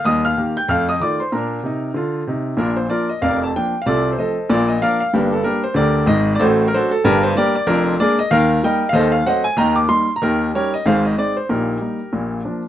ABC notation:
X:1
M:4/4
L:1/16
Q:"Swing" 1/4=189
K:Bb
V:1 name="Grand piano"
[ee']2 [ff']4 [gg']2 [ff']2 [ee']2 [dd']2 [cc']2 | [Bb]12- [Bb]2 z2 | [DFB]2 c2 [FBd]2 e2 [Bdf]2 a2 g3 f | [FAd]3 c [Ace]4 [FBd]2 e2 [Bdf]2 f2 |
[B,DG]2 A2 [DGB]2 c2 [GBd]4 e3 d | [^FAc]3 B [FAc]2 A2 [DGB]2 c2 [GBd]2 d2 | [K:Eb] [DFB]4 [ABd]2 e2 [Bf]4 [Beg]3 f | [=Ace]2 f2 [ce_g]2 _a2 [e=gb]2 d'2 c'3 b |
[EGB]4 [GB_d]2 e2 [Acf]2 e2 =d2 c2 | [EGB]12 z4 |]
V:2 name="Grand piano" clef=bass
[E,,G,]4 [E,B,G]4 [F,,A,]4 [E,A,F]4 | [B,,D]4 [C,E]4 [D,F]4 [C,E]4 | [B,,,B,,]4 [F,B,D]4 [F,,,F,,]4 [F,B,D]4 | [C,,C,]4 [F,A,C]4 [B,,,B,,]4 [F,B,D]4 |
[G,,,G,,]4 [G,B,]4 [D,,D,]4 [_A,,,_A,,]4 | [A,,,A,,]4 [^F,A,D]4 [G,,,G,,]4 [G,B,D]4 | [K:Eb] [F,,,F,,]4 [A,B,D]4 [E,,E,]4 [G,B,E]4 | [E,,E,]4 [_G,=A,C]4 [E,,E,]4 [=G,B,E]4 |
[E,,E,]4 [G,_DE]4 [A,,,A,,]4 [A,CE]4 | [B,,,B,,]4 [G,B,E]4 [B,,,B,,]4 [F,B,D]4 |]